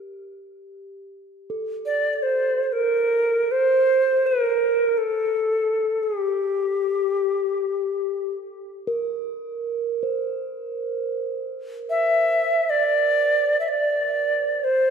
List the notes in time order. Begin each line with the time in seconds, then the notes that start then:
Already playing: G4
1.50 A4
1.86 D5
2.13 D5
2.22 C5
2.64 C5
2.73 A#4
3.51 C5
4.26 A#4
4.97 A4
6.03 G4
8.87 A#4
10.03 C5
11.90 E5
12.70 D5
13.60 E5
13.68 D5
14.64 C5